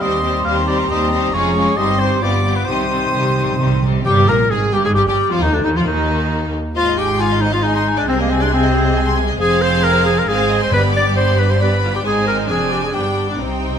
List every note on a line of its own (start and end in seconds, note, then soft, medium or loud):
0.00 0.40 D#2 medium
0.00 1.31 G3 soft
0.00 0.22 G3 medium
0.00 1.34 C4 medium
0.00 0.22 C4 medium
0.00 1.36 G4 soft
0.00 0.22 G4 soft
0.00 0.22 C5 medium
0.00 0.44 D#5 medium
0.00 0.45 C6 medium
0.00 1.34 C6 medium
0.23 0.45 G3 soft
0.23 0.44 C4 soft
0.23 0.45 G4 soft
0.23 0.45 C5 soft
0.45 0.85 D#2 medium
0.45 0.67 G3 medium
0.45 0.67 C4 medium
0.45 0.68 G4 medium
0.45 0.67 C5 medium
0.45 0.55 F5 medium
0.45 1.75 A#5 medium
0.67 0.89 G3 soft
0.67 0.89 C4 soft
0.67 0.89 G4 medium
0.67 0.90 C5 soft
0.67 0.78 D5 medium
0.89 1.28 D#2 medium
0.89 1.29 D#2 medium
0.89 1.11 G3 soft
0.89 1.11 C4 medium
0.89 1.11 G4 medium
0.89 1.11 C5 medium
0.89 1.35 D#5 medium
1.12 1.34 G3 soft
1.12 1.34 C4 soft
1.12 1.34 G4 soft
1.12 1.34 C5 soft
1.33 1.72 F1 medium
1.33 1.72 F2 medium
1.33 1.55 G#3 medium
1.33 1.75 G#3 medium
1.33 1.55 C#4 medium
1.33 1.75 C#4 medium
1.33 1.55 F4 medium
1.33 1.55 G#4 medium
1.33 1.79 G#4 medium
1.33 1.78 C#5 medium
1.33 1.80 C#6 medium
1.56 1.78 G#3 medium
1.56 1.78 C#4 soft
1.56 1.78 F4 soft
1.56 1.78 G#4 medium
1.77 2.17 G1 medium
1.77 2.17 G2 medium
1.77 2.22 G3 medium
1.77 1.98 G3 medium
1.77 2.22 C4 medium
1.77 1.99 C4 soft
1.77 1.99 D#4 medium
1.77 2.23 G4 medium
1.77 1.99 C5 medium
1.77 2.01 D#5 medium
1.77 2.21 C6 medium
1.77 2.24 C6 medium
1.99 2.21 G3 soft
1.99 2.22 C4 medium
1.99 2.22 D#4 soft
1.99 2.24 C5 medium
1.99 2.22 C5 soft
2.21 2.62 G1 medium
2.21 2.63 G2 medium
2.21 2.69 F3 medium
2.21 2.44 G3 soft
2.21 2.44 B3 soft
2.21 2.69 B3 medium
2.21 2.67 F4 soft
2.21 2.44 F4 soft
2.21 2.45 G4 soft
2.21 2.58 D5 medium
2.21 2.67 B5 soft
2.21 2.66 D6 medium
2.45 2.66 G3 soft
2.45 2.67 B3 soft
2.45 2.68 F4 soft
2.45 2.66 G4 soft
2.56 2.64 B4 medium
2.65 3.08 C2 soft
2.65 2.74 C3 soft
2.65 3.08 C3 medium
2.65 3.80 D#3 soft
2.65 2.89 G3 soft
2.65 2.89 C4 soft
2.65 3.83 C4 soft
2.65 3.80 D#4 soft
2.65 2.89 D#4 soft
2.65 2.89 G4 soft
2.65 3.79 C5 medium
2.65 3.80 C6 soft
2.65 3.82 D#6 soft
2.75 2.82 C3 soft
2.83 2.89 C3 soft
2.90 2.97 C3 soft
2.90 3.12 G3 soft
2.90 3.12 C4 soft
2.90 3.10 D#4 soft
2.90 3.11 G4 soft
2.98 3.05 C3 soft
3.06 3.13 C3 soft
3.12 3.54 C2 soft
3.12 3.21 C3 soft
3.12 3.54 C3 soft
3.12 3.35 G3 soft
3.12 3.35 C4 soft
3.12 3.35 D#4 soft
3.12 3.35 G4 soft
3.22 3.28 C3 soft
3.29 3.36 C3 soft
3.36 3.43 C3 soft
3.36 3.58 G3 soft
3.36 3.59 C4 soft
3.36 3.57 D#4 soft
3.36 3.58 G4 soft
3.44 3.51 C3 soft
3.52 3.58 C3 medium
3.59 4.00 C2 medium
3.59 3.65 C3 medium
3.59 4.00 C3 medium
3.59 3.82 G3 soft
3.59 3.81 C4 soft
3.59 3.82 D#4 soft
3.59 3.82 G4 soft
3.67 3.73 C3 medium
3.75 3.81 C3 medium
3.82 3.90 C3 medium
3.82 4.04 G3 soft
3.82 4.05 C4 soft
3.82 4.05 D#4 soft
3.82 4.04 G4 soft
3.91 3.98 C3 medium
4.05 4.26 G1 medium
4.05 4.26 G2 medium
4.05 4.69 C3 medium
4.05 4.26 G3 medium
4.05 4.30 G4 medium
4.05 4.26 G4 medium
4.05 4.14 G5 medium
4.28 4.51 A#1 medium
4.28 4.50 A#2 medium
4.28 4.37 A#3 medium
4.28 4.50 A#4 medium
4.28 4.52 A#4 medium
4.28 4.36 A#5 medium
4.50 4.72 G#1 medium
4.50 4.72 G#2 medium
4.50 4.59 G#3 medium
4.50 4.74 G#4 medium
4.50 4.73 G#4 medium
4.50 4.59 G#5 medium
4.72 4.84 G1 medium
4.72 4.84 G2 medium
4.72 4.84 G3 medium
4.72 4.84 G4 medium
4.72 4.85 G4 medium
4.72 4.77 G5 medium
4.83 4.95 G#2 medium
4.83 4.96 G#3 medium
4.83 4.94 G#4 medium
4.83 4.90 G#4 medium
4.83 4.89 G#5 medium
4.95 5.06 G1 medium
4.95 5.05 G2 medium
4.95 5.06 G3 medium
4.95 5.06 G4 medium
4.95 5.01 G4 medium
4.95 5.00 G5 medium
5.06 5.15 G1 medium
5.06 5.14 G2 medium
5.06 5.29 G3 medium
5.06 5.32 G4 medium
5.06 5.16 G4 medium
5.06 5.29 G5 medium
5.29 5.40 F2 medium
5.29 5.41 F3 medium
5.29 5.43 F4 medium
5.29 5.41 F4 medium
5.29 5.41 F5 medium
5.40 5.52 D#2 medium
5.40 5.52 D#3 medium
5.40 5.55 D#4 medium
5.40 5.53 D#4 medium
5.40 5.53 D#5 medium
5.52 5.57 D2 medium
5.52 5.63 D3 medium
5.52 5.65 D4 medium
5.52 5.64 D4 medium
5.52 5.64 D5 medium
5.63 5.74 D#2 medium
5.63 5.75 D#3 medium
5.63 5.78 D#4 medium
5.63 5.69 D#4 medium
5.63 5.68 D#5 medium
5.74 5.85 F2 medium
5.74 5.86 F3 medium
5.74 5.80 F4 medium
5.74 5.86 F4 medium
5.74 5.86 F5 medium
5.85 6.51 D#2 medium
5.85 6.52 D#2 medium
5.85 6.53 D#3 medium
5.85 6.52 D#4 medium
5.85 6.53 D#5 medium
6.75 8.04 G#1 medium
6.75 8.04 G#2 medium
6.75 9.36 G#3 medium
6.75 8.04 D#4 medium
6.75 7.00 F4 medium
6.75 6.86 C5 medium
6.75 6.85 D#5 medium
6.75 6.97 F5 medium
6.86 6.98 D#5 medium
6.98 7.22 G4 medium
6.98 7.19 G5 medium
6.98 7.09 G#5 medium
7.08 7.19 C6 soft
7.19 7.42 F4 medium
7.19 7.42 F5 medium
7.19 7.31 G#5 medium
7.31 7.42 D#5 soft
7.41 7.52 D#4 medium
7.41 7.53 C5 medium
7.41 7.53 D#5 medium
7.53 7.64 F4 medium
7.53 7.64 D#5 medium
7.53 7.64 F5 medium
7.63 7.74 D#4 medium
7.63 7.74 D#5 medium
7.63 7.75 G#5 medium
7.75 8.00 D#4 medium
7.75 7.83 D#5 medium
7.75 7.86 C6 medium
7.88 7.98 G#5 medium
7.97 8.08 D4 medium
7.97 8.01 D5 medium
7.97 8.09 D#5 medium
8.07 9.37 C2 medium
8.07 9.37 C3 medium
8.07 8.19 C4 medium
8.07 9.38 G#4 medium
8.07 8.19 C5 medium
8.07 8.18 C5 medium
8.18 8.32 A#3 medium
8.18 8.22 A#4 medium
8.18 8.30 D#5 medium
8.29 8.44 C4 medium
8.29 8.34 C5 medium
8.29 8.42 G#5 medium
8.40 8.53 D4 medium
8.40 8.45 D5 medium
8.40 8.52 C6 medium
8.52 9.18 C4 medium
8.52 9.17 C5 medium
8.52 8.63 G#5 medium
8.63 8.74 D#5 medium
8.74 8.85 C5 medium
8.85 8.96 D#5 medium
8.95 9.07 G#5 medium
9.07 9.18 C6 medium
9.17 9.29 G#5 medium
9.29 9.40 D#5 medium
9.40 10.24 F1 medium
9.40 10.24 F2 medium
9.40 10.24 C4 medium
9.40 9.63 G#4 loud
9.40 10.24 G#4 medium
9.40 10.24 C5 medium
9.40 10.24 F5 medium
9.40 9.61 G#5 medium
9.62 9.85 C5 medium
9.62 9.84 C6 medium
9.84 10.05 A#4 medium
9.84 10.06 A#5 medium
10.06 10.20 G#4 medium
10.06 10.18 G#5 medium
10.17 10.30 A#4 medium
10.17 10.28 A#5 medium
10.28 10.72 G#1 medium
10.28 10.72 G#2 medium
10.28 10.71 C4 medium
10.28 10.71 G#4 medium
10.28 10.61 G#4 medium
10.28 10.71 C5 medium
10.28 10.50 F5 medium
10.28 10.61 G#5 medium
10.50 10.72 D#5 medium
10.63 10.73 C5 medium
10.63 10.73 C6 medium
10.71 12.02 G1 medium
10.71 11.34 G2 medium
10.71 12.02 G2 medium
10.71 11.60 B3 medium
10.71 11.59 G4 medium
10.71 10.83 B4 medium
10.71 11.59 D5 medium
10.71 10.95 B5 medium
10.94 11.06 D5 medium
10.94 11.16 D6 medium
11.16 11.41 C5 medium
11.16 11.38 C6 medium
11.38 11.52 B4 medium
11.38 11.49 B5 medium
11.50 11.61 C5 medium
11.50 11.61 C6 medium
11.60 12.04 B3 soft
11.60 11.69 G4 medium
11.60 11.93 B4 medium
11.60 12.04 D5 medium
11.60 11.94 B5 medium
11.84 11.92 F4 soft
11.94 12.00 G4 medium
11.94 12.05 G5 medium
12.04 12.47 G#1 medium
12.04 12.48 G#2 medium
12.04 12.48 C4 medium
12.04 12.48 D#4 medium
12.04 12.26 G#4 medium
12.04 12.49 C5 medium
12.04 12.13 G#5 medium
12.04 12.48 G#5 medium
12.27 12.37 A#4 medium
12.27 12.35 A#5 medium
12.48 12.93 F1 medium
12.48 12.94 F2 medium
12.48 12.93 C4 medium
12.48 12.92 D4 medium
12.48 12.73 G#4 medium
12.48 12.94 D5 medium
12.48 12.56 G#5 medium
12.48 12.93 G#5 medium
12.71 12.82 G4 medium
12.71 12.76 G5 medium
12.83 12.96 G#4 medium
12.83 12.87 G#5 medium
12.93 13.39 G1 soft
12.93 13.39 G2 soft
12.93 13.38 B3 soft
12.93 13.38 D4 soft
12.93 13.28 G4 medium
12.93 13.39 D5 soft
12.93 13.27 G5 medium
12.93 13.39 G5 soft
13.29 13.42 D4 medium
13.29 13.39 D5 soft
13.39 13.79 C2 soft
13.39 13.79 C3 soft
13.39 13.79 C4 soft
13.39 13.79 C4 medium
13.39 13.79 D#4 soft
13.39 13.79 C5 soft
13.39 13.79 G5 soft